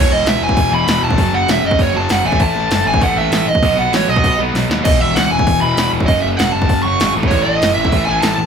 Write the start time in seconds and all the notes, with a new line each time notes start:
Already playing: E2 B2 E3 C#5
0.11 E1 D#5
0.26 C#2 E5, snare, open hi-hat
0.41 E1 G#5
0.49 kick
0.57 E1, kick, open hi-hat
0.71 E1 E2 B2 E3 B5
0.87 E1 E2 B2 E3, snare, open hi-hat
1.03 E1 A5
1.10 kick
1.18 F#1 F#2 C#3 F#3, kick, open hi-hat
1.33 F#1 F#5
1.48 E1 E5, snare, open hi-hat
1.64 F#1 D#5
1.71 kick
1.79 F#1 C#5, kick, open hi-hat
1.94 F#1 F#2 C#3 F#3 A5
2.09 F#1 F#2 C#3 F#3 F#5, snare, open hi-hat
2.25 A1 A2 E3 A3 G#5
2.32 kick
2.40 A1 A5, kick, open hi-hat
2.56 A1
2.70 F#1, snare, open hi-hat
2.85 A1 G#5
2.94 kick
3.01 A1 A2 E3 A3 F#5, kick, open hi-hat
3.16 A1 A2 E3 A3 E5
3.31 A1, snare, open hi-hat
3.46 A1 D#5
3.55 kick
3.62 B1 B2 F#3 B3, kick, open hi-hat
3.77 B1 F#5
3.92 A1 C#5, snare, open hi-hat
4.08 B1 D#5
4.16 kick
4.24 B1, kick, open hi-hat
4.39 B1 B2 F#3 B3
4.54 B1 B2 F#3 B3, snare, open hi-hat
4.69 D#2, snare
4.85 E1 E2 B2 E3 D#5, kick, crash, splash
5.00 E1 E5
5.15 C#2 F#5, snare, open hi-hat
5.31 E1 G#5
5.39 kick
5.47 E1, kick, open hi-hat
5.61 E1 E2 B2 E3 B5
5.77 E1 E2 B2 E3, snare, open hi-hat
5.93 E1
6.00 kick
6.06 F#1 F#2 C#3 F#3 D#5, kick, open hi-hat
6.22 F#1 E5
6.37 E1 F#5, snare, open hi-hat
6.52 F#1 A5
6.62 kick
6.69 F#1, kick, open hi-hat
6.83 F#1 F#2 C#3 F#3 C#6
7.00 G#1 F#2 C#3 F#3, snare, open hi-hat
7.15 A1 A2 E3 A3
7.23 kick
7.28 A1 C#5, kick, open hi-hat
7.43 A1 D#5
7.62 F#1, snare, open hi-hat
7.74 A1 E5
7.85 kick
7.92 A1 A2 E3 A3, kick, open hi-hat
8.05 A1 A3 G#5
8.10 A2 E3
8.21 A1 A5, snare, open hi-hat
8.38 A1